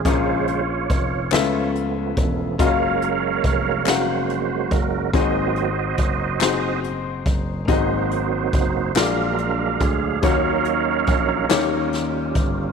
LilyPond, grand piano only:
<<
  \new Staff \with { instrumentName = "Grand piano" } { \time 6/8 \key aes \mixolydian \tempo 4. = 47 <des' f' aes' bes' f''>4 r8 <des' f' a' ces'' e''>4 r8 | <des' f' ges' bes' ees'' f''>4 r8 <des' ges' bes' f'' ges''>4 r8 | <c' ees' ges' aes' des'' ees''>4 r8 <c' ees' ges' aes' c''>4 r8 | <c' ees' ges' aes' ees''>4 r8 <bes f' ges' aes' d''>4 r8 |
<bes des' ees' ges' des''>4 r8 <bes des' ees' g' des''>4 r8 | }
  \new Staff \with { instrumentName = "Grand piano" } { \clef bass \time 6/8 \key aes \mixolydian bes,4. des4. | r2. | aes,4. r4. | aes,4. bes,4. |
ees4. ees4. | }
>>